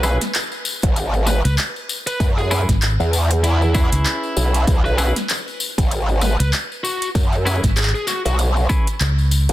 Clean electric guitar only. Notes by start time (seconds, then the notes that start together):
0.03 C#4 E4 G#4 B4
2.51 C#4 E4 G#4 B4
3.75 C#4 E4 G#4 B4
4.98 C#4 E4 G#4 B4
7.45 C#4 E4 G#4 B4
8.69 C#4 E4 G#4 B4